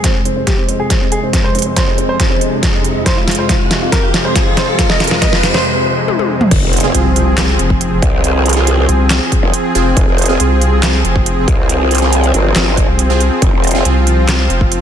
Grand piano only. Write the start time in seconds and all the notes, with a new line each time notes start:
0.04 C4
0.25 C4
0.36 C4
0.47 G4
0.58 C4
0.69 C4
0.80 G#4
0.90 C4
1.01 C4
1.12 G#4
1.23 C4
1.33 C4
1.44 C5
1.55 C4
1.66 C4
1.76 C5
1.87 C4
1.98 C4
2.09 C5
2.20 C4
2.31 C4
3.06 C5
3.17 F4
3.28 F4
3.39 C5
3.49 F4
3.71 F4
3.82 F4
3.92 A#4
4.03 F4
4.14 F4
4.25 C5
4.36 F4
4.47 F4
4.57 C5
4.68 F4
4.79 F4
4.90 D#5
5.00 F4
5.11 F4
5.22 D#5
5.33 F4
5.43 F4
5.54 C5